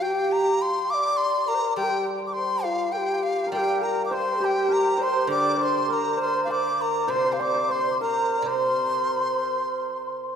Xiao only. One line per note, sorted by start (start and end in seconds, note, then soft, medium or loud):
0.00 0.59 G4 medium
0.90 1.46 D5 medium
0.90 0.95 F5 medium
1.47 1.56 A#4 medium
1.55 1.62 C5 medium
1.61 1.79 A#4 medium
1.77 1.85 G4 medium
1.83 1.91 A#4 medium
1.90 2.07 G4 medium
2.37 2.66 C5 medium
2.64 2.93 F4 medium
2.93 2.98 A#4 medium
2.97 3.49 G4 medium
3.53 3.59 A#4 medium
3.58 3.83 G4 medium
3.82 4.12 A#4 medium
4.10 4.41 C5 medium
4.40 5.02 G4 medium
5.00 5.30 C5 medium
5.00 5.05 D5 medium
5.31 5.58 D5 medium
5.59 5.81 C5 medium
5.81 5.89 C5 soft
5.88 6.21 A#4 medium
6.19 6.28 C5 medium
6.26 6.35 A#4 medium
6.34 6.53 C5 medium
6.80 7.08 A#4 medium
7.09 7.41 C5 medium
7.39 7.71 D5 medium
7.69 7.99 C5 medium
7.99 8.39 A#4 medium
8.38 8.48 D5 soft
8.47 10.36 C5 medium